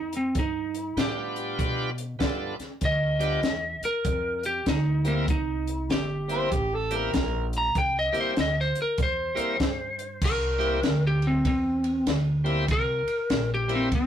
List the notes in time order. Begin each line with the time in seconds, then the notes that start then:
Already playing: F2 D#4
0.13 closed hi-hat
0.17 C4
0.35 G2, kick, closed hi-hat
0.39 D#4
0.75 closed hi-hat
0.97 A2 G3 B3 D4 F4 G4, snare, closed hi-hat
1.36 closed hi-hat
1.59 B2, kick, closed hi-hat
1.98 closed hi-hat
2.19 G2 G3 B3 D4 F4 A4, kick, snare, closed hi-hat
2.59 muted upright bass stroke, snare, closed hi-hat
2.81 D2, kick, closed hi-hat
2.85 D#5
3.19 G3 B3 D4 F4 G4, closed hi-hat
3.43 E2, snare, closed hi-hat
3.82 A#4, muted upright bass stroke, closed hi-hat
4.05 F2, kick, closed hi-hat
4.43 G4, closed hi-hat
4.66 D2 D#4, kick, snare, closed hi-hat
5.04 G3 A#3 C4 E4 A#4, closed hi-hat
5.28 C2 D#4, kick, closed hi-hat
5.67 closed hi-hat
5.90 G1 G4, snare, closed hi-hat
6.28 G3 A#3 C4 E4 G4, closed hi-hat
6.33 C5
6.52 A1 G4, kick, closed hi-hat
6.75 A4
6.91 G3 A#3 C4 E4 G4, closed hi-hat
6.96 A#4
7.14 A#1, kick, snare, closed hi-hat
7.53 closed hi-hat
7.58 A#5
7.75 C2 G5, kick, closed hi-hat
7.99 D#5
8.12 G3 A#3 C4 E4 G4, muted upright bass stroke, closed hi-hat
8.21 C5
8.37 D2, snare, closed hi-hat
8.41 D#5
8.61 C5
8.75 muted upright bass stroke, closed hi-hat
8.82 A#4
8.98 E2, kick, closed hi-hat
9.03 C5
9.35 G3 A#3 C4 E4 A#4, muted upright bass stroke, closed hi-hat
9.60 G2, kick, snare, closed hi-hat
9.99 closed hi-hat
10.22 C2 A#4, kick, crash
10.58 G3 A#3 C4 E4 G4, ride
10.83 D2, snare, ride
11.07 G4
11.22 ride
11.27 C4
11.45 E2 C4, kick, ride
11.84 ride
12.06 D2, snare, ride
12.44 G3 A#3 C4 E4 G4, ride
12.68 C2 A#4, kick, ride
13.07 muted upright bass stroke, ride
13.30 A#1, snare, ride
13.54 G4
13.68 G3 A#3 C4 E4 G4, ride
13.75 C4
13.92 G1 C4, kick, ride